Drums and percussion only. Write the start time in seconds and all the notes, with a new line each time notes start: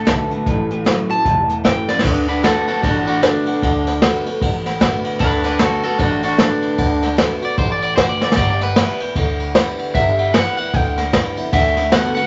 0.07 snare, closed hi-hat
0.31 closed hi-hat
0.46 kick, closed hi-hat
0.70 closed hi-hat
0.86 snare, closed hi-hat
1.10 closed hi-hat
1.25 kick, closed hi-hat
1.49 closed hi-hat
1.65 kick, snare, closed hi-hat
1.88 snare
1.99 snare
2.04 kick, crash
2.28 ride
2.44 snare, ride
2.68 ride
2.83 kick, snare, ride
3.07 ride
3.23 snare, ride
3.47 ride
3.62 kick, snare, ride
3.87 snare, ride
4.02 snare, ride
4.26 ride
4.41 kick, ride
4.66 snare, ride
4.81 kick, snare, ride
5.04 ride
5.20 kick, ride
5.44 snare, ride
5.59 snare, ride
5.83 ride
5.99 kick, snare, ride
6.23 ride
6.38 snare, ride
6.62 ride
6.78 kick, ride
7.02 snare, ride
7.18 snare, ride
7.42 ride
7.58 kick, ride
7.82 ride
7.97 kick, snare, ride
8.21 snare
8.32 snare
8.37 kick, ride, splash
8.61 snare, ride
8.76 snare, ride
9.00 ride
9.15 kick, ride
9.40 ride
9.55 snare, ride
9.79 ride
9.94 kick, snare, ride
10.19 ride
10.34 snare, ride
10.58 ride
10.74 kick, snare, ride
10.97 snare, ride
11.13 kick, snare, ride
11.37 ride
11.53 kick, ride
11.77 snare, ride
11.92 snare, ride
12.16 ride